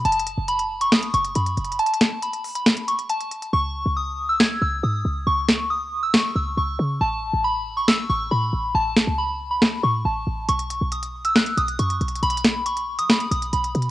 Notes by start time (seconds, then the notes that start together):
0.05 F#1 A5, closed hi-hat
0.12 closed hi-hat
0.20 closed hi-hat
0.27 closed hi-hat
0.38 F#1
0.48 B5, closed hi-hat
0.59 closed hi-hat
0.81 C#6, closed hi-hat
0.92 D#6, snare, closed hi-hat
1.03 closed hi-hat
1.14 F#1 C#6, closed hi-hat
1.25 closed hi-hat
1.35 F#2 B5, closed hi-hat
1.47 closed hi-hat
1.57 F#1, closed hi-hat
1.65 closed hi-hat
1.72 closed hi-hat
1.79 A5, closed hi-hat
1.86 closed hi-hat
1.94 closed hi-hat
2.01 snare, closed hi-hat
2.22 B5, closed hi-hat
2.33 closed hi-hat
2.44 open hi-hat
2.55 B5, closed hi-hat
2.66 snare, closed hi-hat
2.77 closed hi-hat
2.88 C#6, closed hi-hat
2.99 closed hi-hat
3.10 A5, closed hi-hat
3.21 closed hi-hat
3.31 closed hi-hat
3.42 closed hi-hat
3.53 C#2 C#6
3.86 C#2
3.96 D#6
4.29 E6
4.40 G#6, snare
4.62 C#2 E6
4.83 G#2 D#6
5.05 C#2
5.27 C#2 C#6
5.49 snare
5.70 D#6
6.03 E6
6.14 C#6, snare
6.36 C#2 E6
6.57 C#2 C#6
6.79 C#3
7.01 A1 A5
7.33 A1
7.44 B5
7.77 C#6
7.88 E6, snare
8.09 A1 C#6
8.31 A2 B5
8.53 A1
8.75 A1 A5
8.96 B1, snare
9.07 C#2
9.18 B5
9.51 B5
9.62 snare
9.83 A2 C#6
10.05 A1 A5
10.27 A1
10.49 B1 C#6, closed hi-hat
10.59 closed hi-hat
10.70 closed hi-hat
10.81 B1
10.92 D#6, closed hi-hat
11.03 closed hi-hat
11.25 E6, closed hi-hat
11.36 F#6, snare, closed hi-hat
11.46 closed hi-hat
11.57 B1 D#6, closed hi-hat
11.68 closed hi-hat
11.79 F#2 C#6, closed hi-hat
11.90 closed hi-hat
12.01 B1, closed hi-hat
12.08 closed hi-hat
12.15 closed hi-hat
12.23 B1 B5, closed hi-hat
12.30 closed hi-hat
12.37 closed hi-hat
12.44 snare, closed hi-hat
12.66 C#6, closed hi-hat
12.77 closed hi-hat
12.99 F#3 D#6, closed hi-hat
13.10 B5, snare, closed hi-hat
13.15 B1
13.20 closed hi-hat
13.31 B1 D#6, closed hi-hat
13.42 closed hi-hat
13.53 B1 B5, closed hi-hat
13.64 closed hi-hat
13.75 B2, closed hi-hat
13.82 closed hi-hat